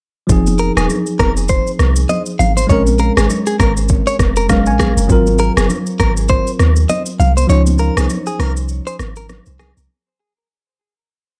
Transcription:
0.27 0.71 F1 loud
0.27 2.64 F3 medium
0.27 2.65 C4 medium
0.27 2.66 D#4 medium
0.27 kick loud
0.27 shaker medium
0.32 2.67 G#4 medium
0.47 high conga medium
0.47 shaker medium
0.58 0.72 A#4 medium
0.58 shaker medium
0.77 0.88 D#1 medium
0.77 0.86 G#4 medium
0.77 cross-stick loud
0.77 high conga medium
0.77 shaker medium
0.90 low conga medium
0.90 shaker medium
1.06 shaker soft
1.19 1.61 F1 medium
1.19 1.32 A#4 medium
1.19 kick medium
1.19 cross-stick medium
1.19 high conga medium
1.19 shaker medium
1.37 shaker medium
1.49 1.71 C5 medium
1.49 kick medium
1.49 shaker medium
1.67 shaker medium
1.79 2.05 C2 medium
1.79 cross-stick medium
1.79 high conga medium
1.79 shaker soft
1.96 shaker medium
2.09 2.22 D#5 medium
2.09 high conga medium
2.09 low conga medium
2.09 shaker medium
2.26 shaker medium
2.39 2.65 G#1 medium
2.39 2.52 F5 medium
2.39 high conga medium
2.39 low conga medium
2.39 shaker medium
2.57 2.66 C5 medium
2.57 high conga medium
2.57 shaker medium
2.67 3.11 A#1 loud
2.67 4.45 G#3 medium
2.67 4.45 C4 medium
2.67 4.46 C#4 medium
2.67 2.82 C#5 medium
2.67 kick loud
2.67 shaker medium
2.72 4.47 A#4 medium
2.87 high conga medium
2.87 shaker medium
2.99 3.12 A#4 medium
2.99 shaker medium
3.17 3.28 G#1 medium
3.17 3.26 G#4 medium
3.17 cross-stick loud
3.17 high conga medium
3.17 shaker medium
3.30 low conga medium
3.30 shaker medium
3.47 3.56 G#4 medium
3.47 shaker soft
3.60 4.01 G#1 medium
3.60 3.72 A#4 medium
3.60 kick loud
3.60 cross-stick medium
3.60 high conga medium
3.60 shaker medium
3.77 shaker medium
3.89 kick loud
3.89 shaker medium
4.07 4.16 C#5 medium
4.07 shaker medium
4.19 4.68 F1 medium
4.19 kick loud
4.19 cross-stick medium
4.19 high conga medium
4.19 shaker medium
4.36 4.46 A#4 medium
4.36 shaker medium
4.48 5.09 G#3 medium
4.48 5.08 C4 soft
4.48 5.10 C#4 medium
4.48 5.10 A#4 medium
4.48 4.66 F5 medium
4.48 kick medium
4.48 cross-stick medium
4.48 high conga medium
4.48 low conga medium
4.48 shaker medium
4.66 4.93 A#1 medium
4.66 5.07 G#5 medium
4.66 shaker medium
4.79 4.92 G#4 medium
4.79 kick medium
4.79 cross-stick loud
4.79 high conga medium
4.79 low conga medium
4.79 shaker medium
4.97 5.08 F#1 medium
4.97 high conga medium
4.97 shaker medium
5.07 5.51 G#1 loud
5.07 7.44 F#3 medium
5.07 7.45 C4 medium
5.07 7.46 F4 medium
5.07 kick loud
5.07 shaker medium
5.12 7.47 A#4 medium
5.27 high conga medium
5.27 shaker medium
5.38 5.52 A#4 medium
5.38 shaker medium
5.57 5.68 F#1 medium
5.57 5.66 G#4 medium
5.57 cross-stick loud
5.57 high conga medium
5.57 shaker medium
5.70 low conga medium
5.70 shaker medium
5.87 shaker soft
6.00 6.41 G#1 medium
6.00 6.12 A#4 medium
6.00 kick loud
6.00 cross-stick medium
6.00 high conga medium
6.00 shaker medium
6.17 shaker medium
6.29 6.51 C5 medium
6.29 kick loud
6.29 shaker medium
6.47 shaker medium
6.59 6.85 D#2 medium
6.59 cross-stick medium
6.59 high conga medium
6.59 shaker medium
6.76 shaker medium
6.89 7.02 D#5 medium
6.89 high conga medium
6.89 low conga medium
6.89 shaker medium
7.06 shaker medium
7.20 7.45 C2 medium
7.20 7.32 F5 medium
7.20 high conga medium
7.20 low conga medium
7.20 shaker medium
7.37 7.46 C5 medium
7.37 high conga soft
7.37 shaker medium
7.47 7.90 C#2 loud
7.47 9.84 F3 medium
7.47 9.85 C#4 medium
7.47 9.86 D#4 medium
7.47 7.62 C#5 medium
7.47 shaker medium
7.52 9.87 C5 medium
7.67 high conga medium
7.67 shaker medium
7.78 7.97 A#4 medium
7.78 shaker medium
7.97 8.08 C2 medium
7.97 8.06 G#4 medium
7.97 cross-stick loud
7.97 high conga medium
7.97 shaker medium
8.10 low conga medium
8.10 shaker medium
8.27 8.40 G#4 medium
8.27 shaker soft
8.39 8.80 C2 medium
8.39 8.52 A#4 medium
8.39 cross-stick medium
8.39 high conga medium
8.39 shaker medium
8.57 shaker medium
8.69 shaker medium
8.87 8.96 C5 medium
8.87 shaker medium
8.99 9.41 G#1 medium
8.99 cross-stick medium
8.99 high conga medium
8.99 shaker soft
9.16 9.26 A#4 medium
9.16 shaker medium
9.29 cross-stick medium
9.29 high conga medium
9.29 low conga medium
9.29 shaker medium
9.46 9.73 C2 medium
9.46 shaker medium
9.59 9.72 G#4 medium
9.59 cross-stick loud
9.59 high conga medium
9.59 low conga medium
9.59 shaker medium
9.77 9.88 C2 medium
9.77 high conga medium
9.77 shaker medium

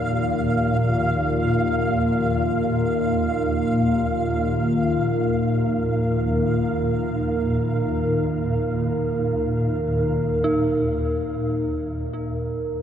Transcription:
0.00 10.43 D#2 medium
0.00 10.42 A#2 medium
0.00 10.42 D#3 medium
0.00 12.82 A#3 medium
0.00 12.82 F4 medium
0.00 12.82 A#4 medium
0.00 10.45 F5 medium
10.42 12.82 D#2 medium
10.42 12.82 A#2 medium
10.42 12.82 D#4 medium

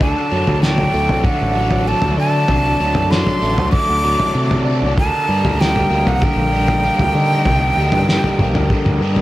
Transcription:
0.01 0.14 D2 medium
0.01 1.23 D3 medium
0.01 4.95 F#3 medium
0.01 4.94 D4 medium
0.01 4.94 A4 medium
0.01 4.94 D5 medium
0.01 0.59 A5 medium
0.01 kick loud
0.01 floor tom medium
0.31 0.45 F#2 medium
0.31 0.61 F#3 medium
0.47 0.87 D2 medium
0.47 floor tom medium
0.62 1.54 F#3 medium
0.62 1.26 G5 medium
0.62 snare medium
0.78 floor tom medium
0.93 1.07 D2 medium
0.93 1.86 A3 medium
1.09 1.23 C2 medium
1.09 floor tom medium
1.24 2.47 D3 medium
1.24 1.89 F#5 medium
1.24 kick loud
1.24 mid tom medium
1.41 1.93 A1 medium
1.55 2.78 F#3 medium
1.71 floor tom medium
1.87 3.40 A3 medium
1.87 2.19 A5 medium
2.02 2.16 D2 medium
2.02 floor tom medium
2.18 2.44 D3 medium
2.18 3.73 D4 medium
2.18 3.12 A5 loud
2.48 2.75 C2 medium
2.48 3.71 D3 medium
2.48 kick loud
2.48 floor tom medium
2.79 2.93 D2 medium
2.79 3.10 F#3 medium
2.95 3.22 F#2 medium
2.95 floor tom medium
3.11 4.02 F#3 medium
3.11 3.71 C6 medium
3.11 snare medium
3.27 floor tom medium
3.42 3.58 A1 medium
3.42 4.33 A3 medium
3.58 3.71 D2 medium
3.58 floor tom medium
3.72 4.95 D3 medium
3.72 4.62 D6 loud
3.72 kick medium
3.72 mid tom medium
3.90 4.15 D2 medium
4.03 4.97 F#3 medium
4.20 floor tom medium
4.34 4.84 C3 medium
4.34 4.97 A3 medium
4.51 floor tom medium
4.65 4.97 D4 medium
4.82 4.95 C2 medium
4.96 5.10 D2 medium
4.96 6.21 D3 medium
4.96 9.21 A#3 medium
4.96 9.21 G4 medium
4.96 7.44 A#4 medium
4.96 9.21 D#5 medium
4.96 5.62 A5 loud
4.96 kick loud
4.96 floor tom medium
5.28 5.42 G2 medium
5.28 5.58 G3 medium
5.44 5.83 D2 medium
5.44 floor tom medium
5.59 6.51 G3 medium
5.59 6.09 G5 medium
5.59 snare medium
5.76 floor tom medium
5.90 6.04 D2 medium
5.90 6.83 A#3 medium
6.06 6.19 C2 medium
6.06 6.25 F#5 medium
6.06 floor tom medium
6.22 7.46 D3 medium
6.22 9.21 G5 medium
6.22 kick loud
6.22 mid tom medium
6.36 6.89 A#1 medium
6.53 7.77 G3 medium
6.68 floor tom medium
6.84 8.39 A#3 medium
6.99 7.12 D2 medium
6.99 floor tom medium
7.14 7.40 D3 medium
7.14 8.71 D#4 medium
7.45 7.72 C2 medium
7.45 8.71 D3 medium
7.45 9.21 A4 medium
7.45 kick medium
7.45 floor tom medium
7.77 7.90 D2 medium
7.77 8.09 G3 medium
7.92 8.18 G2 medium
7.92 floor tom medium
8.09 9.01 G3 medium
8.09 snare medium
8.24 floor tom medium
8.39 8.54 A#1 medium
8.39 9.21 A#3 medium
8.39 mid tom medium
8.54 8.67 D2 medium
8.54 floor tom medium
8.70 9.21 D3 medium
8.70 kick medium
8.70 mid tom medium
8.85 8.98 D2 medium
8.85 mid tom medium
9.01 9.21 G2 medium
9.01 9.21 G3 medium
9.16 floor tom medium

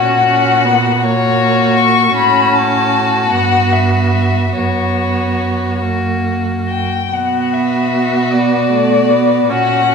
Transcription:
0.00 2.16 A#2 medium
0.00 0.26 C#4 soft
0.00 0.99 F#4 soft
0.00 1.05 F#5 medium
0.26 0.66 C#4 medium
0.65 1.06 B3 soft
1.03 2.16 A#3 medium
1.03 2.14 F#4 medium
1.03 1.79 C#5 medium
1.77 2.16 C#6 medium
2.15 3.33 A2 medium
2.15 3.29 C#4 soft
2.15 4.51 F#4 medium
2.15 2.56 B5 medium
2.54 3.32 A5 medium
3.31 4.54 G2 soft
3.31 4.53 B3 soft
3.31 3.74 F#5 medium
3.72 4.55 E5 soft
4.53 6.86 F#2 soft
4.53 5.84 B3 soft
4.53 5.78 F#4 soft
4.53 5.80 C#5 soft
5.82 6.90 A#3 soft
5.82 6.88 F#4 soft
6.69 7.14 G5 soft
7.11 9.46 B2 soft
7.11 8.29 B3 soft
7.11 9.46 F#4 soft
7.11 7.55 F#5 soft
7.53 8.35 E5 medium
8.33 8.71 B3 soft
8.33 9.53 D5 medium
8.71 9.12 A3 soft
9.11 9.51 B3 soft
9.48 9.95 A#2 soft
9.48 9.95 C#4 soft
9.48 9.87 F#4 soft
9.48 9.95 F#5 medium
9.90 9.95 F#4 soft

